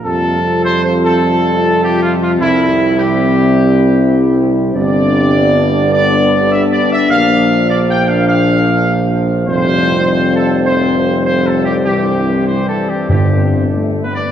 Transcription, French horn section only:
\new Staff \with { instrumentName = "French horn section" } { \time 4/4 \key f \lydian \tempo 4 = 101 << { f'1 | e'1 | d'1~ | d'1 |
c'1~ | c'2. a8 b8 | } \\ { c'1~ | c'1~ | c'4 b2. | bes1 |
g1~ | g2. r4 | } >> }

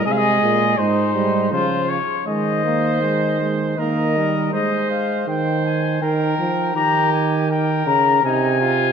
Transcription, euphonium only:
\new Staff \with { instrumentName = "Euphonium" } { \clef bass \time 3/4 \key aes \major \tempo 4 = 81 aes4 aes8 g8 f8 r8 | aes8 bes8 aes8 aes8 bes8 g8 | r2. | r2. | }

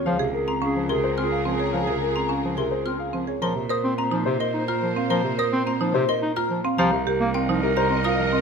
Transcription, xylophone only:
\new Staff \with { instrumentName = "Xylophone" } { \time 3/4 \key bes \minor \tempo 4 = 107 r8. bes''16 r8 c'''16 r16 f'''16 r8. | r8. bes''16 r8 c'''16 r16 f'''16 r8. | c'''16 r16 ees'''16 r16 bes''16 r8 c'''16 r16 f'''16 r8 | c'''16 r16 ees'''16 r16 bes''16 r8 c'''16 r16 f'''16 r8 |
bes''16 r8. g''16 r8 bes''16 r16 ees'''16 r8 | }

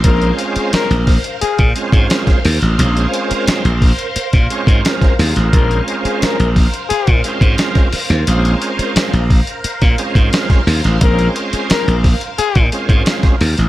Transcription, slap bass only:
\new Staff \with { instrumentName = "Slap bass" } { \clef bass \time 4/4 \key bes \minor \tempo 4 = 88 bes,,8 r8. bes,,8 r8 bes,16 r16 aes,16 r8 ees,16 a,,16 | bes,,8 r8. bes,,8 r8 bes,16 r16 aes,16 r8 ees,16 a,,16 | bes,,8 r8. bes,,8 r8 bes,16 r16 aes,16 r8. ees,16 | bes,,8 r8. bes,,8 r8 bes,16 r16 aes,16 r8 ees,16 a,,16 |
bes,,8 r8. bes,,8 r8 bes,16 r16 aes,16 r8 ees,16 a,,16 | }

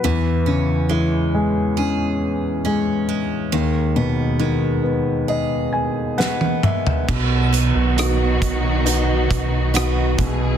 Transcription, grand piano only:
<<
  \new Staff \with { instrumentName = "Grand piano" } { \time 4/4 \key b \mixolydian \tempo 4 = 68 r1 | r2 r8 gis''8 fis''8 e''8 | r1 | }
  \new Staff \with { instrumentName = "Grand piano" } { \time 4/4 \key b \mixolydian e,8 cis8 e8 gis8 cis'4 gis4 | dis,8 b,8 dis8 b8 dis''4 b4 | b,4 <b dis' fis'>4 <b dis' fis'>4 <b dis' fis'>8 b,8 | }
>>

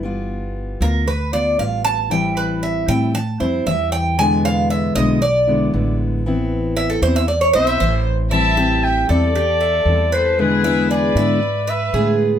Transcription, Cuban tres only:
\new Staff \with { instrumentName = "Cuban tres" } { \time 4/4 \key a \minor \tempo 4 = 116 r4. bes'8 b'8 d''8 f''8 a''8 | g''8 b'8 e''8 g''8 a''8 c''8 e''8 g''8 | gis''8 f''8 e''8 dis''8 d''4. r8 | r4 e''16 a'16 c''16 e''16 d''16 cis''16 c''16 b'16 c''8. r16 |
e'8 g'4 a'8 g'8 e''4 b'8~ | b'8 e'8 gis'8 e''4 b'8 gis'4 | }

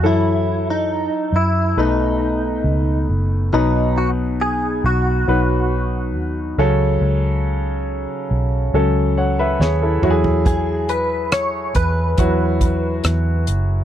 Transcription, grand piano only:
\new Staff \with { instrumentName = "Grand piano" } { \time 4/4 \key b \mixolydian \tempo 4 = 69 << { r2 b,4. r8 | b,4. r2 cis8~ | cis4 r4. <cis'' fis''>16 <b' e''>16 <gis' cis''>16 <e' a'>8 r16 | r1 | } \\ { <e fis a'>2 <a dis' b'>2 | <fis dis' b'>2 <fis dis' b'>4. <fis cis' a'>8~ | <fis cis' a'>4. r8 <fis cis' a'>4. <fis e' fis' gis'>8~ | <fis e' fis' gis'>4. r8 <fis e' fis'>2 | } >> }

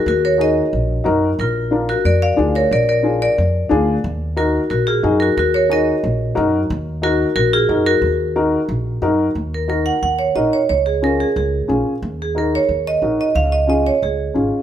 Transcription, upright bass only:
\new Staff \with { instrumentName = "Upright bass" } { \clef bass \time 4/4 \key ees \minor \tempo 4 = 181 ees,2 bes,,4 ges,4 | bes,,2 f,4 d,4 | bes,,2 f,4 d,4 | ees,2 bes,,4 ges,4 |
ees,2 bes,,4 ges,4 | ees,2 bes,,4 ges,4 | ees,2 bes,,4 ges,4 | ees,2 ees,4 bes,,8 r8 |
des,2 des,4 bes,,8 r8 | ees,2 ees,4 bes,,8 r8 | des,2 des,4 aes,,8 r8 | }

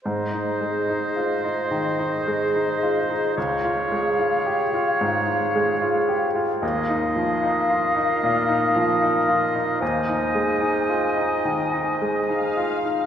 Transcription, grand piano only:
\new Staff \with { instrumentName = "Grand piano" } { \time 4/4 \key aes \major \tempo 4 = 73 \tuplet 3/2 { aes,8 ees'8 aes8 ees'8 f'8 ees'8 ees8 ees'8 aes8 ees'8 f'8 ees'8 } | \tuplet 3/2 { des,8 f'8 aes8 f'8 g'8 f'8 aes,8 f'8 aes8 f'8 g'8 f'8 } | \tuplet 3/2 { ees,8 ees'8 f8 ees'8 f'8 ees'8 bes,8 ees'8 f8 ees'8 f'8 ees'8 } | \tuplet 3/2 { ees,8 ees'8 aes8 ees'8 f'8 ees'8 ees8 ees'8 aes8 ees'8 f'8 ees'8 } | }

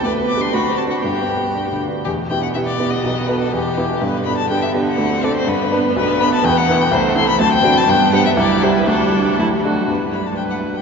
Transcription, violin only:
\new Staff \with { instrumentName = "Violin" } { \time 2/4 \key g \major \tempo 4 = 122 d''8 d'''16 c'''16 b''8 a''16 fis''16 | g''4. r8 | \key e \minor g'8 g''16 fis''16 e''16 d''8 dis''16~ | dis''8 b'16 a'16 g'4 |
b'8 b''16 a''16 g''16 e''8 fis''16~ | fis''8 d''16 c''16 b'4 | \key g \major b'8 b''16 a''16 g''16 fis''8 g''16 | c''8 c'''16 b''16 a''16 g''8 a''16 |
g''8 fis''16 e''16 d''8 c''16 b'16 | a'4 r4 | b'8 b''16 a''16 g''16 fis''8 g''16 | }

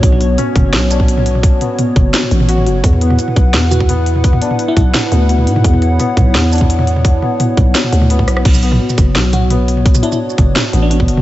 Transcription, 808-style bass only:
\new Staff \with { instrumentName = "808-style bass" } { \clef bass \time 4/4 \key b \minor \tempo 4 = 171 b,,4 r8 fis,,8 b,,2~ | b,,8 r4 fis,,8 r8 a,,4 fis,,8 | e,4 r8 b,,8 e,2~ | e,8 r4 b,,8 r8 d,4 gis,8 |
e,4 r8 b,,8 e,2~ | e,8 r4 b,,8 r8 d,4 b,,8 | b,,4 r8 fis,,8 b,,2~ | b,,8 r4 fis,,8 r8 a,,4 fis,,8 | }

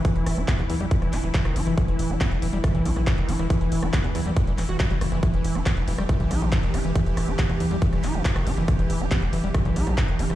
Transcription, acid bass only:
\new Staff \with { instrumentName = "Acid bass" } { \clef bass \time 4/4 \key e \minor \tempo 4 = 139 e16 e8 e'16 b16 r16 e16 g16 e16 e16 e'16 e16 e16 dis16 e'16 e16 | e16 e8 e'16 b16 r16 e16 g16 e16 e16 e'16 e16 e16 dis16 e'16 e16 | e16 e8 e'16 b16 r16 e16 g16 e16 e16 e16 fis'16 g16 g16 r16 e16 | e16 e8 e'16 b16 r16 e16 g16 e16 e16 e'16 e16 e16 dis16 e'16 e16 |
e16 e8 e'16 b16 r16 e16 g16 e16 e16 e'16 e16 e16 dis16 e'16 e16 | e16 e8 e'16 b16 r16 e16 g16 e16 e16 e'16 e16 e16 dis16 e'16 e16 | }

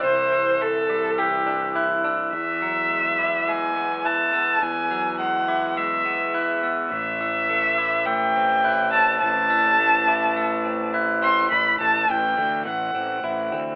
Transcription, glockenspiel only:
\new Staff \with { instrumentName = "Glockenspiel" } { \time 4/4 \key a \dorian \tempo 4 = 104 r8 e'''4 d'''8 e'''4 fis'''8 e'''8 | r8 e'''4 d'''8 e'''4 fis'''8 e'''8 | r8 e'''4 d'''8 e'''4 fis'''8 e'''8 | r8 e'''4 d'''8 e'''4 fis'''8 e'''8 |
r8 e'''4 d'''8 e'''4 fis'''8 e'''8 | r1 | }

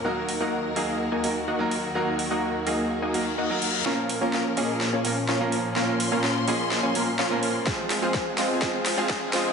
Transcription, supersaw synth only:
\new Staff \with { instrumentName = "Supersaw synth" } { \time 4/4 \key bes \minor \tempo 4 = 126 <bes ees' ges' ees'' ges''>8. <bes ees' ges' ees'' ges''>8. <bes ees' ges' ees'' f''>8. <bes ees' ges' ees'' aes''>8. <bes ees' ges' ees'' ges''>8 r8 | <bes ees' ges' ees'' ges''>8. <bes ees' ges' ees'' ges''>8. <bes ees' ges' ees'' f''>8. <bes ees' ges' ees'' aes''>8. <bes ees' ges' ees'' ges''>8 r8 | <bes des' f' des'' f''>8. <bes des' f' des'' f''>8. <bes des' f' des'' ees''>8. <bes des' f' des'' aes''>8. <bes des' f' des'' f''>8 r8 | <bes des' f' des'' f''>8. <bes des' f' des'' f''>8. <bes des' f' des'' ees''>8. <bes des' f' des'' aes''>8. <bes des' f' des'' f''>8 r8 |
<aes c' f' c'' f''>8. <aes c' f' c'' f''>8. <aes c' f' c'' ees''>8 <aes c' f' c'' f''>8. <aes c' f' c'' f''>8. <aes c' f' c'' ees''>8 | }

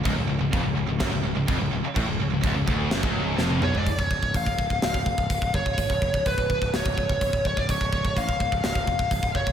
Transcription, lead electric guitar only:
\new Staff \with { instrumentName = "Lead electric guitar" } { \time 4/4 \tempo 4 = 126 r1 | r2. r8 cis''16 d''16 | cis''4 eis''4 eis''4. cis''8~ | cis''4 b'4 cis''4. cis''16 d''16 |
cis''4 eis''4 eis''4. cis''8 | }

